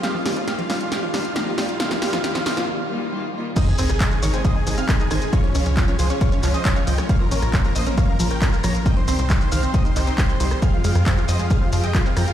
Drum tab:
CC |----------------|----------------|x---------------|----------------|
HH |x-oxxxoxx-oxx-ox|xxoxxxox--------|x-oxxxoxx-oxx-ox|xxoxxxoxxxoxxxox|
SH |----------------|----------------|x-xxxxxxx-xxxxxx|x-xxxxxxxxxxxxxx|
CP |----------------|----------------|----x-------x---|----x-----x-x---|
SD |o-o-o-o-o-o-o-o-|oooooooo--------|---r----------r-|---------------r|
BD |----------------|----------------|o---o---o---o---|o---o---o---o---|

CC |----------------|----------------|----------------|
HH |x-oxxxoxx-oxx-ox|xxoxxxoxxxoxxxox|x-oxxxoxx-oxx-ox|
SH |x-xxxxxxx-xxxxxx|x-xxxxxxxxxxxxxx|x-xxxxxxx-xxxxxx|
CP |----x-------x---|----x-----x-x---|----x-------x---|
SD |---r----------r-|---------------r|---r----------r-|
BD |o---o---o---o---|o---o---o---o---|o---o---o---o---|